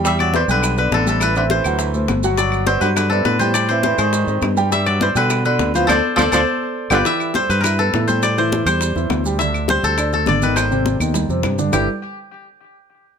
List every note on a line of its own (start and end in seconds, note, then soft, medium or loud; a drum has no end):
0.00 0.43 E2 medium
0.00 0.18 G3 loud
0.00 0.35 A4 medium
0.00 0.35 C5 medium
0.00 0.20 D5 loud
0.05 0.29 G3 medium
0.05 0.29 G4 medium
0.05 1.56 E5 medium
0.05 0.29 G5 medium
0.05 high bongo medium
0.05 high conga soft
0.05 maracas medium
0.19 0.34 F#3 medium
0.19 1.80 D5 medium
0.19 high conga soft
0.19 claves medium
0.19 maracas soft
0.33 0.42 E3 medium
0.33 0.46 B3 medium
0.33 0.45 B4 medium
0.33 0.42 C5 medium
0.33 0.46 D5 medium
0.33 high bongo medium
0.33 high conga medium
0.33 maracas soft
0.48 0.89 B1 medium
0.48 0.77 D3 medium
0.48 0.72 G3 medium
0.48 0.72 G4 medium
0.48 0.78 B4 medium
0.48 0.72 G5 medium
0.48 high bongo soft
0.48 high conga soft
0.48 maracas medium
0.63 high bongo medium
0.63 high conga soft
0.63 claves medium
0.63 maracas medium
0.77 0.92 D3 medium
0.77 1.02 B3 medium
0.77 1.01 B4 medium
0.77 1.22 B4 medium
0.77 1.02 D5 medium
0.77 high bongo soft
0.77 high conga soft
0.77 maracas soft
0.91 1.59 A1 medium
0.91 1.07 D3 medium
0.91 1.08 A4 medium
0.91 high bongo medium
0.91 low bongo medium
0.91 high conga medium
0.91 maracas soft
1.06 1.22 C3 medium
1.06 1.30 G3 medium
1.06 1.31 G4 loud
1.06 2.99 A4 medium
1.06 1.31 G5 medium
1.06 high bongo soft
1.06 high conga medium
1.06 maracas medium
1.20 1.36 E3 medium
1.20 1.37 B4 medium
1.20 high bongo medium
1.20 high conga soft
1.20 claves medium
1.20 maracas medium
1.36 1.43 D3 medium
1.36 1.48 C4 medium
1.36 1.43 B4 medium
1.36 1.48 C5 medium
1.36 1.48 E5 medium
1.36 high bongo soft
1.36 high conga soft
1.36 maracas soft
1.50 2.20 E3 medium
1.50 1.63 C4 medium
1.50 2.67 C5 medium
1.50 1.63 E5 medium
1.50 high bongo medium
1.50 high conga medium
1.50 maracas soft
1.64 2.06 D2 medium
1.64 1.89 F#3 medium
1.64 1.89 F#4 medium
1.64 1.89 F#5 medium
1.64 high conga soft
1.64 claves medium
1.64 maracas medium
1.79 high bongo medium
1.79 high conga soft
1.79 maracas medium
1.94 2.18 A3 medium
1.94 2.19 A4 medium
1.94 2.19 C5 medium
1.94 high bongo soft
1.94 high conga soft
1.94 maracas soft
2.08 2.76 G1 medium
2.08 high bongo medium
2.08 low bongo medium
2.08 high conga medium
2.08 claves medium
2.08 maracas soft
2.23 2.36 F#3 medium
2.23 2.36 F#4 medium
2.23 2.36 F#5 medium
2.23 high bongo soft
2.23 maracas medium
2.38 2.62 F#3 medium
2.38 2.65 F#3 medium
2.38 2.62 F#4 medium
2.38 3.53 D5 medium
2.38 2.62 F#5 medium
2.38 high bongo medium
2.38 maracas medium
2.52 high conga soft
2.52 claves medium
2.52 maracas soft
2.66 2.81 F#3 medium
2.66 2.79 B3 medium
2.66 2.79 B4 medium
2.66 2.87 C5 medium
2.66 2.79 D5 medium
2.66 high bongo medium
2.66 high conga loud
2.66 maracas soft
2.81 3.22 G2 loud
2.81 2.89 D3 medium
2.81 3.05 F#3 medium
2.81 3.06 F#4 medium
2.81 2.87 B4 medium
2.81 3.06 F#5 medium
2.81 high bongo soft
2.81 high conga soft
2.81 maracas medium
2.96 3.10 D3 medium
2.96 3.25 B4 medium
2.96 high bongo medium
2.96 high conga soft
2.96 claves medium
2.96 maracas medium
3.10 3.24 C3 medium
3.10 3.35 B3 medium
3.10 5.00 A4 medium
3.10 3.35 B4 medium
3.10 3.36 D5 medium
3.10 high bongo soft
3.10 high conga soft
3.10 maracas soft
3.25 3.93 A2 medium
3.25 3.39 D3 medium
3.25 3.45 B4 medium
3.25 high bongo medium
3.25 low bongo medium
3.25 high conga medium
3.25 maracas soft
3.39 3.54 E3 medium
3.39 3.64 G3 medium
3.39 3.65 G4 medium
3.39 3.68 C5 medium
3.39 3.65 G5 medium
3.39 high bongo soft
3.39 high conga medium
3.39 maracas medium
3.54 3.69 G3 medium
3.54 4.86 D5 medium
3.54 high bongo medium
3.54 claves medium
3.54 maracas medium
3.69 3.84 E3 medium
3.69 3.82 C4 medium
3.69 3.83 C5 medium
3.69 3.82 C5 medium
3.69 3.83 E5 medium
3.69 high bongo soft
3.69 high conga soft
3.69 maracas soft
3.83 3.98 E3 medium
3.83 3.97 C4 medium
3.83 3.98 C5 medium
3.83 3.97 C5 medium
3.83 3.97 E5 medium
3.83 high bongo medium
3.83 high conga loud
3.83 maracas soft
3.98 4.26 G#2 medium
3.98 4.54 D#3 medium
3.98 4.22 G#3 medium
3.98 4.22 G#4 medium
3.98 5.02 C5 medium
3.98 4.23 G#5 medium
3.98 high conga soft
3.98 claves medium
3.98 maracas medium
4.13 high bongo medium
4.13 maracas medium
4.27 4.41 G#2 medium
4.27 4.52 C4 medium
4.27 4.52 C5 medium
4.27 4.52 D#5 medium
4.27 high bongo soft
4.27 high conga soft
4.27 maracas soft
4.42 5.10 G2 medium
4.42 high bongo medium
4.42 low bongo medium
4.42 high conga medium
4.42 claves medium
4.42 maracas soft
4.57 4.69 G3 loud
4.57 4.69 G4 loud
4.57 4.69 G5 loud
4.57 high bongo soft
4.57 high conga soft
4.57 maracas medium
4.71 4.95 G3 medium
4.71 4.85 G3 medium
4.71 4.95 G4 medium
4.71 6.21 E5 loud
4.71 4.96 G5 medium
4.71 high bongo medium
4.71 maracas medium
4.86 5.00 F#3 medium
4.86 5.91 D5 medium
4.86 high conga soft
4.86 claves medium
4.86 maracas soft
5.00 5.09 E3 medium
5.00 5.13 B3 medium
5.00 5.13 B4 medium
5.00 5.08 C5 medium
5.00 5.13 D5 medium
5.00 high bongo medium
5.00 high conga loud
5.00 maracas soft
5.15 5.56 B2 medium
5.15 5.44 D3 medium
5.15 5.39 G3 medium
5.15 5.39 G4 medium
5.15 5.45 B4 medium
5.15 5.40 G5 medium
5.15 high bongo soft
5.15 maracas medium
5.30 high bongo medium
5.30 high conga soft
5.30 claves medium
5.30 maracas medium
5.45 5.72 D3 medium
5.45 5.69 B3 medium
5.45 5.81 B4 medium
5.45 5.69 B4 medium
5.45 5.69 D5 medium
5.45 high bongo soft
5.45 high conga soft
5.45 maracas soft
5.59 5.86 D2 medium
5.59 high bongo medium
5.59 low bongo medium
5.59 high conga medium
5.59 maracas soft
5.74 5.88 E3 medium
5.74 5.87 F3 medium
5.74 5.87 F4 medium
5.74 5.89 C5 medium
5.74 5.87 F5 medium
5.74 high bongo soft
5.74 high conga medium
5.74 maracas medium
5.87 6.00 D2 loud
5.87 5.96 F3 loud
5.87 6.16 A4 loud
5.87 5.98 A4 medium
5.87 5.98 C5 medium
5.87 6.19 C5 loud
5.87 5.98 D5 loud
5.87 low bongo loud
5.87 high conga medium
5.87 claves medium
5.87 maracas medium
5.92 6.21 D5 medium
6.16 6.29 D2 medium
6.16 6.24 F3 loud
6.16 6.31 A4 loud
6.16 6.28 A4 medium
6.16 6.28 C5 medium
6.16 6.33 C5 loud
6.16 6.28 D5 medium
6.16 low bongo loud
6.16 high conga loud
6.16 claves medium
6.16 maracas medium
6.22 6.35 D5 medium
6.32 6.43 D2 medium
6.32 6.40 F3 medium
6.32 7.67 A4 medium
6.32 6.42 A4 medium
6.32 6.42 C5 medium
6.32 6.98 C5 medium
6.32 6.42 D5 medium
6.32 6.94 D5 medium
6.32 low bongo loud
6.32 high conga medium
6.32 claves loud
6.32 maracas loud
6.90 7.01 G1 medium
6.90 6.98 D3 medium
6.90 7.00 F4 loud
6.90 8.95 G4 medium
6.90 7.00 G4 loud
6.90 7.00 B4 medium
6.90 7.41 B4 medium
6.90 low bongo medium
6.90 high conga medium
6.90 claves medium
6.90 maracas medium
6.94 8.23 D5 medium
7.05 7.29 E3 medium
7.05 7.30 E4 medium
7.05 8.55 E5 loud
7.05 high bongo medium
7.05 maracas medium
7.20 high conga soft
7.20 claves medium
7.20 maracas soft
7.34 7.59 G3 medium
7.34 7.59 G4 medium
7.34 7.56 C5 loud
7.34 high bongo medium
7.34 high conga loud
7.34 maracas soft
7.49 7.90 G2 medium
7.49 7.63 B4 medium
7.49 high bongo soft
7.49 high conga soft
7.49 maracas medium
7.61 7.76 E4 medium
7.61 7.70 A#4 medium
7.61 8.14 B4 medium
7.61 high bongo medium
7.61 high conga soft
7.61 claves medium
7.65 7.77 E5 medium
7.65 maracas medium
7.79 7.91 B3 medium
7.79 9.69 A4 medium
7.79 7.91 B4 medium
7.79 high bongo soft
7.79 high conga soft
7.79 maracas soft
7.94 8.61 A2 medium
7.94 8.06 E3 medium
7.94 8.06 E4 medium
7.94 high bongo medium
7.94 low bongo medium
7.94 high conga medium
7.94 maracas soft
8.08 8.32 G3 medium
8.08 8.32 G4 medium
8.08 8.38 C5 medium
8.08 high bongo soft
8.08 high conga medium
8.08 maracas medium
8.23 9.83 D5 medium
8.23 high bongo medium
8.23 high conga soft
8.23 claves medium
8.23 maracas medium
8.38 8.62 E3 medium
8.38 8.62 E4 medium
8.38 8.66 C5 medium
8.38 high bongo soft
8.38 high conga soft
8.38 maracas soft
8.52 high bongo medium
8.52 high conga loud
8.52 maracas soft
8.66 8.93 E2 medium
8.66 8.91 G3 medium
8.66 8.91 G4 medium
8.66 9.70 C5 medium
8.66 claves medium
8.66 maracas medium
8.81 high bongo medium
8.81 high conga soft
8.81 maracas medium
8.96 9.09 E2 medium
8.96 9.20 E3 medium
8.96 9.20 E4 medium
8.96 high bongo soft
8.96 high conga soft
8.96 maracas soft
9.10 9.78 D2 medium
9.10 high bongo medium
9.10 low bongo medium
9.10 high conga medium
9.10 claves medium
9.10 maracas soft
9.24 9.37 G3 medium
9.24 9.38 G4 medium
9.24 high bongo soft
9.24 high conga soft
9.24 maracas medium
9.39 9.64 D3 medium
9.39 9.64 D4 medium
9.39 10.88 E5 medium
9.39 high bongo medium
9.39 maracas medium
9.54 high conga soft
9.54 claves medium
9.54 maracas soft
9.68 9.93 G3 medium
9.68 9.93 G4 medium
9.68 10.49 C5 loud
9.68 high bongo medium
9.68 high conga medium
9.68 maracas soft
9.83 10.24 D2 medium
9.83 10.13 A4 medium
9.83 high bongo soft
9.83 high conga soft
9.83 maracas medium
9.98 10.10 D4 medium
9.98 10.10 D5 medium
9.98 high bongo medium
9.98 claves medium
9.98 maracas medium
10.13 10.25 A3 medium
10.13 10.25 A4 medium
10.13 12.04 A4 medium
10.13 high bongo soft
10.13 high conga soft
10.13 maracas soft
10.26 10.95 G#1 medium
10.26 10.39 D3 medium
10.26 10.39 D4 medium
10.26 11.89 D5 medium
10.26 high bongo medium
10.26 low bongo medium
10.26 high conga medium
10.26 maracas soft
10.42 10.66 D#3 medium
10.42 10.66 D#4 medium
10.42 10.62 B4 medium
10.42 high bongo soft
10.42 high conga medium
10.42 maracas medium
10.56 11.40 C5 medium
10.56 high bongo medium
10.56 claves medium
10.56 maracas medium
10.71 10.95 C3 medium
10.71 10.95 C4 medium
10.71 high bongo soft
10.71 high conga soft
10.71 maracas soft
10.86 high bongo medium
10.86 high conga loud
10.86 maracas soft
11.00 11.27 D#2 medium
11.00 11.24 D#3 medium
11.00 11.25 D#4 medium
11.00 high conga medium
11.00 claves medium
11.00 maracas medium
11.14 high bongo medium
11.14 low conga medium
11.14 maracas medium
11.29 11.43 F2 medium
11.29 11.53 C3 medium
11.29 11.53 C4 medium
11.29 high bongo soft
11.29 maracas soft
11.43 11.70 G2 medium
11.43 high bongo medium
11.43 low bongo medium
11.43 low conga medium
11.43 claves medium
11.43 maracas soft
11.58 11.71 D3 medium
11.58 11.71 D4 medium
11.58 high bongo soft
11.58 low conga medium
11.58 maracas medium
11.72 11.87 G1 medium
11.72 11.86 G3 medium
11.72 11.86 D4 medium
11.72 11.86 E4 medium
11.72 11.87 G4 medium
11.72 11.87 A4 medium
11.72 11.87 B4 medium
11.72 low bongo medium
11.72 low conga medium
11.72 claves medium
11.72 maracas medium